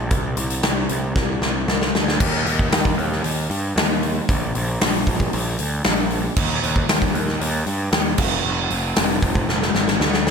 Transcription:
Already playing: A#1
0.11 C2, kick, closed hi-hat
0.37 C2, closed hi-hat
0.50 closed hi-hat
0.63 C2, snare, closed hi-hat
0.89 C2, closed hi-hat
1.16 C2, kick, snare
1.41 C2, snare
1.67 C2, snare
1.81 snare
1.94 D2, snare
2.08 snare
2.20 D#2, kick, crash
2.45 D#2, open hi-hat
2.59 kick
2.71 D#2, snare, open hi-hat
2.85 kick
2.97 D#2, open hi-hat
3.12 snare
3.24 D#2, open hi-hat
3.50 G2, open hi-hat
3.76 D#2, snare, open hi-hat
4.03 open hi-hat
4.29 A#1, kick, open hi-hat
4.55 A#1, open hi-hat
4.81 A#1, snare, open hi-hat
5.07 A#1, kick, open hi-hat
5.20 kick
5.33 A#1, open hi-hat
5.59 D2, open hi-hat
5.84 A#1, snare, open hi-hat
6.10 open hi-hat
6.37 D#2, kick, crash
6.63 D#2, open hi-hat
6.76 kick
6.88 D#2, snare, open hi-hat
7.02 kick
7.14 D#2, open hi-hat
7.28 snare
7.40 D#2, open hi-hat
7.66 G2, open hi-hat
7.92 D#2, snare, open hi-hat
8.18 F1, kick, crash
8.45 F1
8.70 F1, open hi-hat
8.96 F1, snare, open hi-hat
9.22 F1, kick, open hi-hat
9.35 kick
9.48 F1, snare
9.62 snare
9.74 G#1, snare
9.88 snare
10.00 D2, snare
10.13 snare
10.27 snare

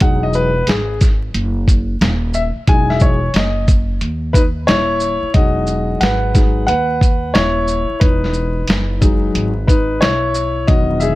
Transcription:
0.00 E1 F#3 G#3 D#4 F#5, kick, closed hi-hat
0.23 D#5
0.33 B4, shaker
0.67 G#1 G#4, snare, closed hi-hat
1.01 kick, snare, closed hi-hat, shaker
1.34 F#1, closed hi-hat
1.68 kick, closed hi-hat, shaker
2.01 D#1, snare, closed hi-hat
2.34 E5, shaker
2.56 muted upright bass stroke
2.67 E1 F#3 G#3 D#4 G#5, kick, closed hi-hat
2.90 E5, snare
3.00 C#5, kick, shaker
3.34 F#1 D#5, snare, closed hi-hat
3.68 kick, closed hi-hat, shaker
4.01 D#2, closed hi-hat
4.33 D#4 B4, kick, closed hi-hat, shaker
4.67 D#1 E4 C#5, snare, closed hi-hat
5.00 shaker
5.23 muted upright bass stroke
5.34 E1 F#3 G#3 D#4 F#4 D#5, kick, closed hi-hat
5.67 shaker
6.01 G#1 B4 F#5, snare, closed hi-hat
6.35 F#3 G#3 D#4, kick, snare, closed hi-hat, shaker
6.67 D#2 B4 F#5, closed hi-hat
7.01 kick, closed hi-hat, shaker
7.34 D#1 E4 C#5, snare, closed hi-hat
7.68 shaker
7.90 muted upright bass stroke
8.00 E1 D#4 B4, kick, closed hi-hat
8.24 snare
8.34 shaker
8.67 F#1, snare, closed hi-hat
9.01 F#3 G#3 D#4, kick, closed hi-hat, shaker
9.35 G#1, closed hi-hat
9.67 D#4 B4, kick, closed hi-hat, shaker
10.01 B1 E4 C#5, snare, closed hi-hat
10.34 shaker
10.67 E1 D#3 F#3 B3 F#4 D#5, kick, closed hi-hat
11.00 G#4 E5, shaker

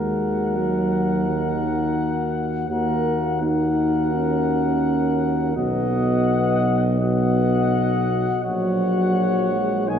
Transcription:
Already playing: D#2 G#3 F#4 A#4 F#5
0.57 F#3
1.27 D#3
2.69 D#2 A#3 F#4 A#4 F#5
3.41 D#4 F#4 A#4 F#5
4.14 C#4
5.56 B1 B3 F#4 D#5 F#5
7.00 B3 F#4 D#5 F#5
8.43 A#1 F#3 F#4 C#5 F#5
9.52 G#3
9.88 B1 A#3 D#4 G#4 G#5

